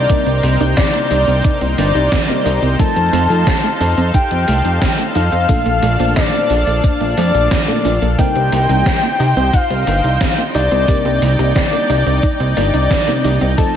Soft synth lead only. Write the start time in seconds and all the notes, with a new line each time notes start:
Already playing: D5
0.77 D5
1.78 D5
2.79 A5
4.14 G5
5.15 F5
6.16 D5
7.18 D5
8.18 G5
9.53 F5
10.54 D5
11.55 D5
12.57 D5
13.58 A5